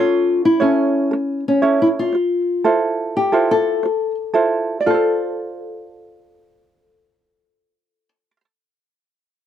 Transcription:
Already playing: C#4 F4 A4 C#5
0.45 E4
0.60 C#4 E4 A4 C#5
1.11 C#4 A4
1.48 C#4
1.62 C#4 E4 A4 C#5
1.82 E4
1.99 F4
2.13 F4 C5
2.64 E4 F4 A4 C5
3.17 G4
3.32 E4 F4 A4 C5
3.51 A4
3.83 F4 C5
4.34 E4 F4 A4 C5
4.80 D5
4.86 F4 A4
4.90 C5
4.94 A4

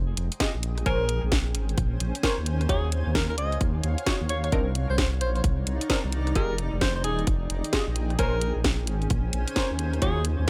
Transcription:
Already playing: F1 G#4
0.17 F1, closed hi-hat
0.32 closed hi-hat
0.40 F4 G4 G#4 D#5, kick, snare, closed hi-hat
0.55 A#1
0.63 C#4, closed hi-hat
0.78 cross-stick, closed hi-hat
0.82 C5
0.86 A#1 A#4 C5 C#5 G#5, kick, closed hi-hat
1.08 G#5, closed hi-hat
1.23 A#1
1.32 kick, cross-stick, snare, closed hi-hat
1.55 G#1, closed hi-hat
1.69 closed hi-hat
1.78 A#1, kick, closed hi-hat
2.00 A#1, closed hi-hat
2.15 closed hi-hat
2.23 A#4 C5 C#5 G#5, kick, snare, closed hi-hat
2.38 D#2
2.46 F5, closed hi-hat
2.53 C#5
2.61 cross-stick, closed hi-hat
2.69 D#2 D#4 F4 F#4 G#4 C#5, kick, closed hi-hat
2.92 closed hi-hat
3.07 D#2
3.11 A#4 F#5, kick, cross-stick, snare, closed hi-hat
3.30 A#4
3.38 C#2 D#5, closed hi-hat
3.52 closed hi-hat
3.61 D#2, kick, closed hi-hat
3.84 D#2, closed hi-hat
3.98 closed hi-hat
4.06 D#4 F4 F#4 C#5, kick, snare, closed hi-hat
4.21 D#2
4.29 C#5, closed hi-hat
4.44 C#5, cross-stick, closed hi-hat
4.52 C2 C4 D4 D#4 A#4, kick, closed hi-hat
4.72 D5, closed hi-hat
4.76 A#5
4.90 C2 C5
4.98 C5, kick, cross-stick, snare, closed hi-hat
5.21 A#1 C5, closed hi-hat
5.36 C5, closed hi-hat
5.44 C2, kick, closed hi-hat
5.67 C2, closed hi-hat
5.81 closed hi-hat
5.90 C4 D4 D#4 A#4, kick, snare, closed hi-hat
6.04 C2
6.12 closed hi-hat
6.27 cross-stick, closed hi-hat
6.35 F1 F4 G4 G#4 A#4 D#5, kick, closed hi-hat
6.41 G#4
6.55 G5, closed hi-hat
6.73 F1
6.81 C5, kick, cross-stick, snare, closed hi-hat
6.96 C5
7.04 D#1 G#4, closed hi-hat
7.19 closed hi-hat
7.27 F1, kick, closed hi-hat
7.50 F1, closed hi-hat
7.64 closed hi-hat
7.73 F4 G4 G#4 D#5, kick, snare, closed hi-hat
7.88 A#1
7.96 C#4, closed hi-hat
8.10 cross-stick, closed hi-hat
8.19 A#1 A#4 C5 C#5 G#5, kick, closed hi-hat
8.26 C5
8.37 G#5
8.41 closed hi-hat
8.56 A#1
8.64 kick, cross-stick, snare, closed hi-hat
8.87 G#1, closed hi-hat
9.02 closed hi-hat
9.10 A#1, kick, closed hi-hat
9.33 A#1, closed hi-hat
9.48 closed hi-hat
9.56 A#4 C5 C#5 G#5, kick, snare, closed hi-hat
9.71 D#2
9.79 F5, closed hi-hat
9.93 cross-stick, closed hi-hat
10.02 D#2 D#4 F4 F#4 G#4 C#5, kick, closed hi-hat
10.25 closed hi-hat
10.39 D#2

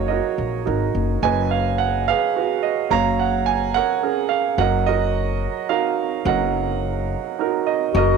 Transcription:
Already playing: F#1 F#3 D#4 F#4 A#4 C#5 D#5 F5
0.08 F#4 A#4 D#5
0.38 A#1
0.66 G#1 D#4 F#4 A#4
0.95 F#1
1.22 F#1 F#3 B4 D#5 G#5
1.51 F5
1.78 F#5
2.08 G#4 B4 F5
2.36 F#4 G#4 B4
2.63 D#5
2.90 F#1 F#3 C#5 F5 A#5
3.19 F#5
3.46 G#5
3.74 A#4 C#5 F#5
4.02 C#4 G#4 A#4
4.29 F5
4.58 F#1 F#3 A#4 D#5 F#5
4.86 F#4 A#4 D#5
5.69 D#4 F#4 A#4 F5
6.25 F#1 F#3 A#4 D#5 F#5
7.39 D#4 F#4 A#4
7.67 D#5
7.94 F#1 F#3 F#4 D#5
7.98 A#4

